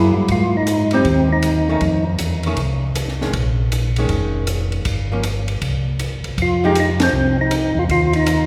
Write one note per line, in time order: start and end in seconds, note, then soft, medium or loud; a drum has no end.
0.00 0.12 F#2 medium
0.00 0.27 F#3 medium
0.00 0.27 A#3 medium
0.00 0.14 E4 loud
0.00 0.27 E4 medium
0.00 0.28 G#4 medium
0.16 0.29 G2 medium
0.28 1.01 G#2 medium
0.28 0.56 F4 medium
0.28 kick soft
0.28 ride medium
0.57 0.95 D#4 loud
0.67 hi-hat pedal medium
0.67 ride medium
0.91 1.05 G3 medium
0.91 1.05 C4 medium
0.91 1.29 C4 loud
0.91 1.05 D#4 medium
0.91 ride soft
1.05 1.78 D#2 medium
1.05 kick soft
1.05 ride medium
1.33 1.69 D#4 medium
1.42 hi-hat pedal medium
1.42 ride medium
1.69 1.81 D#3 medium
1.69 1.81 A3 medium
1.69 1.81 C#4 medium
1.69 2.05 D#4 loud
1.81 2.17 F2 medium
1.81 kick soft
1.81 ride medium
2.18 2.55 E2 medium
2.18 hi-hat pedal medium
2.18 ride medium
2.43 2.57 D#3 medium
2.43 2.58 A3 medium
2.43 2.58 C#4 medium
2.43 ride soft
2.57 3.30 C2 medium
2.57 kick soft
2.57 ride medium
2.95 hi-hat pedal medium
2.95 ride medium
3.08 snare soft
3.21 3.33 D#3 soft
3.21 3.33 G#3 medium
3.21 3.33 C#4 medium
3.21 snare soft
3.33 4.06 A#1 medium
3.33 kick soft
3.33 ride medium
3.72 hi-hat pedal medium
3.72 ride medium
3.96 4.46 D#3 medium
3.96 4.46 G#3 medium
3.96 4.47 C#4 medium
3.96 ride medium
4.09 4.82 F1 medium
4.09 kick soft
4.09 ride medium
4.47 hi-hat pedal medium
4.47 ride medium
4.72 ride soft
4.85 5.58 G1 medium
4.85 kick soft
4.85 ride medium
5.12 5.23 F3 medium
5.12 5.23 A#3 medium
5.12 5.24 C#4 medium
5.23 hi-hat pedal medium
5.23 ride medium
5.48 ride soft
5.61 6.20 C2 medium
5.61 kick soft
5.61 ride medium
5.99 hi-hat pedal medium
5.99 ride medium
6.24 6.31 C2 soft
6.24 ride medium
6.37 7.10 F2 medium
6.37 kick soft
6.37 ride medium
6.42 6.65 F4 loud
6.64 6.75 F3 medium
6.64 6.75 G#3 medium
6.64 6.75 D#4 medium
6.64 6.71 D#4 medium
6.64 6.76 G4 medium
6.75 hi-hat pedal medium
6.75 ride medium
6.80 6.90 D#4 medium
7.00 7.37 C4 loud
7.00 snare medium
7.00 ride medium
7.13 7.72 C2 medium
7.41 7.79 D#4 medium
7.51 hi-hat pedal medium
7.51 ride medium
7.75 7.88 E2 medium
7.79 7.84 F4 medium
7.89 8.46 D#2 medium
7.89 8.13 F4 loud
7.89 kick soft
7.89 ride medium
8.13 8.46 D#4 loud
8.13 ride soft
8.26 hi-hat pedal medium
8.26 ride medium